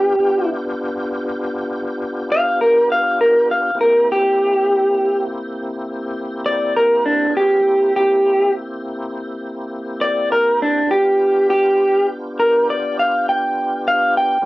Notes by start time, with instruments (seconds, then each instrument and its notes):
Already playing: tonewheel organ B3 D4 F4 G4, clean electric guitar G4
0.19 tonewheel organ B3 D4 F4 G4
2.32 clean electric guitar F5
2.61 clean electric guitar A#4
2.92 clean electric guitar F5
3.21 clean electric guitar A#4
3.51 clean electric guitar F5
3.74 tonewheel organ A#3 C4 E4 G4
3.81 clean electric guitar A#4
4.12 clean electric guitar G4
6.46 clean electric guitar D5
6.76 clean electric guitar A#4
7.06 clean electric guitar D4
7.29 tonewheel organ B3 C#4 F4 G#4
7.37 clean electric guitar G4
7.60 tonewheel organ A#3 C4 E4 G4
7.96 clean electric guitar G4
10.01 clean electric guitar D5
10.32 clean electric guitar A#4
10.62 clean electric guitar D4
10.86 tonewheel organ B3 D4 F4 G4
10.91 clean electric guitar G4
11.50 clean electric guitar G4
12.40 clean electric guitar A#4
12.70 clean electric guitar D5
12.99 clean electric guitar F5
13.29 clean electric guitar G5
13.88 clean electric guitar F5
14.17 clean electric guitar G5
14.42 tonewheel organ B3 D4 F4